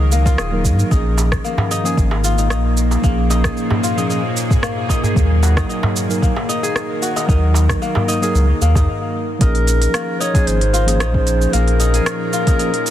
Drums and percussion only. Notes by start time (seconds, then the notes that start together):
0.12 shaker
0.26 kick, shaker
0.38 cross-stick, shaker
0.65 kick, shaker
0.79 shaker
0.91 kick, shaker
1.18 darbuka tek, shaker
1.32 kick, cross-stick, shaker
1.45 shaker
1.58 darbuka tek, darbuka dum
1.71 shaker
1.86 shaker
1.97 kick, shaker
2.11 darbuka ka, darbuka tek
2.24 shaker
2.38 shaker
2.50 cross-stick, shaker
2.77 shaker
2.91 darbuka ka, shaker
3.04 kick, shaker
3.31 darbuka tek, shaker
3.44 kick, cross-stick, darbuka ka, shaker
3.57 shaker
3.70 darbuka tek, darbuka dum
3.84 shaker
3.98 shaker
4.10 shaker
4.37 shaker
4.51 kick, darbuka dum, shaker
4.63 cross-stick, shaker
4.77 darbuka tek
4.89 kick, darbuka ka, shaker
5.03 darbuka dum, shaker
5.16 kick, shaker
5.43 darbuka tek, shaker
5.57 kick, cross-stick, shaker
5.70 shaker
5.83 darbuka tek, darbuka dum
5.96 shaker
6.10 shaker
6.22 kick, shaker
6.36 darbuka ka, darbuka tek
6.50 shaker
6.64 shaker
6.76 cross-stick, shaker
7.03 shaker
7.16 darbuka ka, shaker
7.29 kick, shaker
7.54 darbuka tek, shaker
7.69 kick, cross-stick, darbuka ka, shaker
7.82 shaker
7.95 darbuka tek, darbuka dum
8.08 darbuka ka, shaker
8.23 shaker
8.35 shaker
8.62 shaker
8.75 kick, darbuka dum, shaker
9.41 kick, open hi-hat, shaker
9.55 open hi-hat
9.67 open hi-hat, shaker
9.82 open hi-hat, shaker
9.94 cross-stick, open hi-hat, shaker
10.21 shaker
10.35 kick, open hi-hat, shaker
10.47 open hi-hat, shaker
10.61 open hi-hat
10.74 open hi-hat, shaker
10.88 open hi-hat, shaker
11.00 cross-stick, open hi-hat, shaker
11.14 kick
11.27 open hi-hat, shaker
11.42 shaker
11.53 open hi-hat, shaker
11.68 open hi-hat
11.80 open hi-hat, shaker
11.94 open hi-hat, shaker
12.06 cross-stick, open hi-hat, shaker
12.33 shaker
12.47 kick, open hi-hat, shaker
12.59 open hi-hat, shaker
12.74 open hi-hat
12.86 open hi-hat, shaker